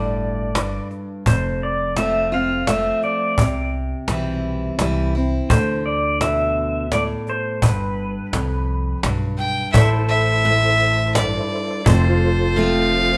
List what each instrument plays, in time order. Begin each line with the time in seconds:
Already playing: upright bass G1, steel-string acoustic guitar G2 A2, pedal steel guitar D5
0.55 steel-string acoustic guitar G2, cajon slap
0.91 cajon slap
1.26 upright bass F1, steel-string acoustic guitar F2, pedal steel guitar C5, cajon bass
1.63 pedal steel guitar D5
1.96 steel-string acoustic guitar F3 A3 C4 F4, pedal steel guitar E5, cajon slap
2.32 steel-string acoustic guitar C4 F4, pedal steel guitar F5
2.67 steel-string acoustic guitar F3 A3 C4 F4, pedal steel guitar E5, cajon slap
3.02 pedal steel guitar D5, cajon slap
3.38 upright bass C2, steel-string acoustic guitar C3, cajon bass
4.08 upright bass B1, steel-string acoustic guitar E3 G3 C4 E4, cajon slap
4.78 upright bass C2, steel-string acoustic guitar E3 G3 C4 E4, cajon slap
5.15 steel-string acoustic guitar C4 E4, cajon slap
5.50 upright bass D2, steel-string acoustic guitar D3, pedal steel guitar C5, cajon bass
5.86 pedal steel guitar D5
6.21 steel-string acoustic guitar B2, pedal steel guitar E5, cajon slap
6.92 steel-string acoustic guitar A2, pedal steel guitar D5, cajon slap
7.27 pedal steel guitar C5, cajon slap
7.62 upright bass G1, steel-string acoustic guitar G2, pedal steel guitar B4, cajon bass
8.33 upright bass C2, steel-string acoustic guitar F2, cajon slap
9.03 upright bass B1, steel-string acoustic guitar G2, cajon slap
9.38 fiddle G5, cajon slap
9.72 upright bass A1, steel-string acoustic guitar A2, pedal steel guitar E4 A4, tonewheel organ E4 A4 C5, fiddle E5, cajon bass
9.76 pedal steel guitar C5
10.08 fiddle E5
10.45 steel-string acoustic guitar A2, cajon slap
11.15 steel-string acoustic guitar G2, fiddle D5, cajon slap
11.86 upright bass F1, steel-string acoustic guitar F2, pedal steel guitar E4 A4 C5, tonewheel organ F4 A4 C5, fiddle C5, cajon bass
12.06 pedal steel guitar F4
12.56 steel-string acoustic guitar F3 A3 C4 F4, fiddle F5, cajon slap